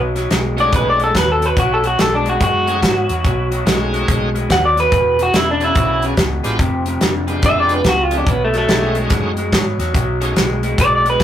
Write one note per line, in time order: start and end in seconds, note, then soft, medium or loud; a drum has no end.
0.00 0.25 B1 medium
0.00 0.13 B2 medium
0.00 0.13 F#3 loud
0.15 0.29 B2 medium
0.15 0.29 F#3 medium
0.15 snare soft
0.15 closed hi-hat medium
0.30 0.67 B1 medium
0.30 0.55 B2 medium
0.30 0.55 G#3 medium
0.30 snare loud
0.30 closed hi-hat medium
0.57 0.71 B2 medium
0.57 0.71 G#3 medium
0.57 1.11 A3 medium
0.57 1.11 C#4 medium
0.57 1.12 D#4 medium
0.57 1.12 F#4 medium
0.57 1.12 G#4 medium
0.57 0.73 D5 medium
0.57 closed hi-hat soft
0.72 1.09 B1 medium
0.72 0.97 B2 medium
0.72 0.97 G#3 medium
0.72 0.88 B4 medium
0.72 kick loud
0.72 closed hi-hat medium
0.90 1.02 D5 medium
0.99 1.13 B2 medium
0.99 1.13 G#3 medium
0.99 closed hi-hat soft
1.04 1.16 A4 medium
1.14 1.51 D#2 medium
1.14 1.39 B2 medium
1.14 1.39 F#3 medium
1.14 kick medium
1.14 snare loud
1.14 closed hi-hat medium
1.18 1.30 B4 medium
1.32 1.46 A4 medium
1.41 1.55 B2 medium
1.41 1.55 F#3 medium
1.41 closed hi-hat medium
1.46 1.58 B4 medium
1.56 1.93 B1 medium
1.56 1.81 B2 medium
1.56 1.81 F#3 medium
1.56 1.72 F#4 medium
1.56 kick loud
1.56 closed hi-hat medium
1.74 1.86 A4 medium
1.83 1.97 B2 medium
1.83 1.97 F#3 medium
1.83 2.00 F#4 medium
1.83 closed hi-hat medium
1.98 2.35 B1 medium
1.98 2.23 B2 medium
1.98 2.23 G#3 medium
1.98 2.14 A4 medium
1.98 snare loud
1.98 closed hi-hat medium
2.15 2.27 D4 medium
2.26 2.39 B2 medium
2.26 2.39 G#3 medium
2.26 2.42 F#4 medium
2.26 closed hi-hat medium
2.40 2.77 F#2 medium
2.40 2.65 B2 medium
2.40 2.65 G#3 medium
2.40 3.64 F#4 medium
2.40 kick loud
2.40 closed hi-hat medium
2.66 2.81 B2 medium
2.66 2.81 G#3 medium
2.66 2.80 A3 medium
2.66 2.81 C#4 medium
2.66 2.81 D#4 medium
2.66 2.81 F#4 medium
2.66 2.81 G#4 medium
2.66 closed hi-hat medium
2.82 3.06 G#2 medium
2.82 3.07 B2 medium
2.82 3.07 F#3 medium
2.82 kick medium
2.82 snare loud
2.82 closed hi-hat medium
3.09 3.22 E2 medium
3.09 3.23 B2 medium
3.09 3.23 F#3 medium
3.09 closed hi-hat medium
3.24 3.61 B1 medium
3.24 3.48 B2 medium
3.24 3.49 F#3 loud
3.24 kick loud
3.24 closed hi-hat medium
3.51 3.64 B2 medium
3.51 3.65 F#3 medium
3.51 closed hi-hat medium
3.65 4.02 B1 medium
3.65 3.90 B2 medium
3.65 3.91 G#3 medium
3.65 4.29 A3 medium
3.65 4.29 C#4 medium
3.65 4.30 D#4 medium
3.65 4.30 F#4 medium
3.65 4.30 G#4 medium
3.65 snare loud
3.65 closed hi-hat medium
3.93 4.07 B2 medium
3.93 4.07 G#3 medium
3.93 closed hi-hat medium
4.08 4.45 B1 medium
4.08 4.32 B2 medium
4.08 4.32 G#3 medium
4.08 kick loud
4.08 closed hi-hat medium
4.35 4.48 B2 medium
4.35 4.49 G#3 medium
4.35 closed hi-hat medium
4.50 4.86 D#2 medium
4.50 4.74 B2 medium
4.50 4.74 F#3 medium
4.50 4.65 F#5 medium
4.50 kick medium
4.50 snare medium
4.50 closed hi-hat medium
4.65 4.78 D5 medium
4.76 4.90 B2 medium
4.76 4.91 F#3 medium
4.76 5.20 B4 medium
4.76 snare soft
4.76 closed hi-hat medium
4.92 5.28 E1 medium
4.92 5.16 E2 medium
4.92 5.16 B2 medium
4.92 kick loud
4.92 closed hi-hat medium
5.19 5.32 E2 medium
5.19 5.33 B2 medium
5.19 closed hi-hat medium
5.23 5.35 F#4 medium
5.33 5.70 E1 medium
5.33 5.58 E2 medium
5.33 5.58 C#3 medium
5.33 5.49 E4 medium
5.33 snare loud
5.33 closed hi-hat medium
5.51 5.63 D4 medium
5.60 5.74 E2 medium
5.60 5.75 C#3 medium
5.60 6.14 B3 medium
5.60 6.14 C#4 medium
5.60 6.15 D4 medium
5.60 6.04 E4 medium
5.60 6.15 F#4 medium
5.60 6.15 G#4 medium
5.60 closed hi-hat medium
5.75 6.12 B1 medium
5.75 6.00 E2 medium
5.75 6.00 C#3 medium
5.75 kick loud
5.75 closed hi-hat medium
6.02 6.16 E2 medium
6.02 6.17 C#3 medium
6.02 closed hi-hat medium
6.17 6.41 C#2 medium
6.17 6.42 E2 medium
6.17 6.42 B2 medium
6.17 kick medium
6.17 snare loud
6.17 closed hi-hat medium
6.44 6.57 A1 medium
6.44 6.58 E2 medium
6.44 6.58 B2 medium
6.44 6.58 G#3 medium
6.44 6.58 B3 medium
6.44 6.58 D4 medium
6.44 6.58 F4 medium
6.44 6.58 G4 medium
6.44 snare soft
6.44 closed hi-hat medium
6.59 6.96 F1 medium
6.59 6.84 F2 medium
6.59 6.84 C3 medium
6.59 kick loud
6.59 closed hi-hat medium
6.86 7.00 F2 medium
6.86 7.00 C3 medium
6.86 closed hi-hat medium
7.01 7.38 F1 medium
7.01 7.26 F2 medium
7.01 7.26 D3 medium
7.01 snare loud
7.01 closed hi-hat medium
7.27 7.41 F2 medium
7.27 7.42 D3 medium
7.27 7.82 G#3 medium
7.27 7.82 B3 medium
7.27 7.82 D4 medium
7.27 7.82 F4 medium
7.27 7.82 G4 medium
7.27 closed hi-hat medium
7.42 7.79 F1 medium
7.42 7.67 F2 medium
7.42 7.67 D3 medium
7.42 7.58 E5 loud
7.42 kick loud
7.42 snare soft
7.42 closed hi-hat medium
7.60 7.73 D5 medium
7.69 7.83 F2 medium
7.69 7.84 D3 medium
7.69 closed hi-hat medium
7.73 7.86 B4 medium
7.84 8.21 C#2 medium
7.84 8.09 F2 medium
7.84 8.09 C3 medium
7.84 kick medium
7.84 snare loud
7.84 closed hi-hat medium
7.89 8.03 F#4 loud
8.03 8.18 F4 medium
8.11 8.25 F2 medium
8.11 8.26 C3 medium
8.11 8.25 A3 medium
8.11 8.25 C#4 medium
8.11 8.25 D#4 medium
8.11 8.25 F#4 medium
8.11 8.25 G#4 medium
8.11 closed hi-hat medium
8.18 8.30 D4 medium
8.26 8.63 B1 medium
8.26 8.51 B2 medium
8.26 8.51 F#3 loud
8.26 8.42 B3 medium
8.26 kick loud
8.26 closed hi-hat medium
8.45 8.56 A3 medium
8.54 8.67 B2 medium
8.54 8.68 F#3 medium
8.54 snare soft
8.54 closed hi-hat medium
8.58 8.97 A3 loud
8.67 9.05 B1 loud
8.67 8.93 B2 medium
8.67 8.93 G#3 medium
8.67 9.31 A3 medium
8.67 9.32 C#4 medium
8.67 9.32 D#4 medium
8.67 9.32 F#4 medium
8.67 9.32 G#4 medium
8.67 snare loud
8.67 closed hi-hat medium
8.95 9.09 B2 medium
8.95 9.10 G#3 medium
8.95 closed hi-hat medium
9.10 9.47 F#2 medium
9.10 9.35 B2 medium
9.10 9.35 G#3 medium
9.10 kick loud
9.10 snare soft
9.10 closed hi-hat medium
9.37 9.51 B2 medium
9.37 9.51 G#3 medium
9.37 closed hi-hat medium
9.52 9.76 G#2 medium
9.52 9.77 B2 medium
9.52 9.77 F#3 medium
9.52 kick medium
9.52 snare loud
9.52 closed hi-hat medium
9.78 9.92 E2 medium
9.78 9.93 B2 medium
9.78 9.93 F#3 medium
9.78 snare soft
9.78 closed hi-hat medium
9.94 10.31 B1 medium
9.94 10.18 B2 medium
9.94 10.19 F#3 loud
9.94 kick loud
9.94 closed hi-hat medium
10.21 10.35 B2 medium
10.21 10.35 F#3 medium
10.21 10.34 A3 medium
10.21 10.34 C#4 medium
10.21 10.35 D#4 medium
10.21 10.35 F#4 medium
10.21 10.35 G#4 medium
10.21 closed hi-hat medium
10.36 10.60 B2 medium
10.36 10.60 G#3 medium
10.36 snare loud
10.36 closed hi-hat medium
10.63 10.77 B2 medium
10.63 10.77 G#3 medium
10.63 closed hi-hat medium
10.78 11.14 B1 medium
10.78 11.02 B2 medium
10.78 11.02 G#3 medium
10.78 10.93 D5 loud
10.78 kick loud
10.78 snare soft
10.78 closed hi-hat medium
10.95 11.07 D5 medium
11.04 11.18 B2 medium
11.04 11.18 G#3 medium
11.04 closed hi-hat medium
11.10 11.21 B4 medium
11.19 11.23 B2 medium
11.19 11.23 F#3 medium
11.19 11.23 A3 medium
11.19 11.23 C#4 medium
11.19 11.23 D#4 medium
11.19 11.23 F#4 medium
11.19 11.23 B4 medium
11.19 kick medium
11.19 closed hi-hat medium